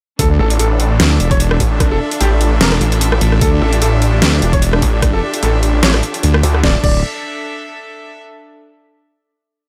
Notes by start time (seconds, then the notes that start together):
0.19 D2 D4 F4 A4, kick, closed hi-hat
0.30 D4
0.39 A1 A4
0.50 D4, closed hi-hat
0.59 A1 A4, closed hi-hat
0.71 D4 A4
0.80 D4, open hi-hat
0.91 D4
1.00 D2, snare, closed hi-hat
1.11 D4
1.17 E1 D4 E5, closed hi-hat
1.31 C#5, kick, closed hi-hat
1.40 D4, closed hi-hat
1.51 D4, cross-stick
1.60 A1, kick, open hi-hat
1.71 D4
1.80 D4, kick, cross-stick, closed hi-hat
1.91 A4
2.00 D4
2.11 D4, closed hi-hat
2.21 A1 G4, closed hi-hat
2.32 D4
2.41 D4, open hi-hat
2.52 D4
2.61 E1 A#4, snare, closed hi-hat
2.72 D4, cross-stick
2.81 A1, closed hi-hat
2.92 closed hi-hat
3.01 closed hi-hat
3.12 cross-stick
3.21 A1, open hi-hat
3.32 cross-stick
3.41 D2 G4 A4, kick, closed hi-hat
3.53 D4
3.61 A1 A4
3.73 D4, closed hi-hat
3.82 A1 A4, closed hi-hat
3.93 D4
4.02 D4, open hi-hat
4.13 D4
4.22 D2, snare, closed hi-hat
4.33 D4
4.42 E1 D4, closed hi-hat
4.53 C#5, kick, closed hi-hat
4.62 D4, closed hi-hat
4.73 D4, cross-stick
4.82 A1, kick, open hi-hat
4.93 D4
5.02 D4, kick, cross-stick, closed hi-hat
5.13 A4
5.23 D4
5.34 D4, closed hi-hat
5.43 A1 A4, closed hi-hat
5.54 D4
5.63 D4, open hi-hat
5.74 D4
5.83 A1 C#5, snare, closed hi-hat
5.94 D4, cross-stick
6.03 closed hi-hat
6.14 closed hi-hat
6.23 D2, closed hi-hat
6.34 cross-stick
6.43 D2, open hi-hat
6.54 cross-stick
6.63 D1 D4 F4 A4 D5, kick, snare
6.70 A4
6.76 E5
6.83 D1 D5, kick, crash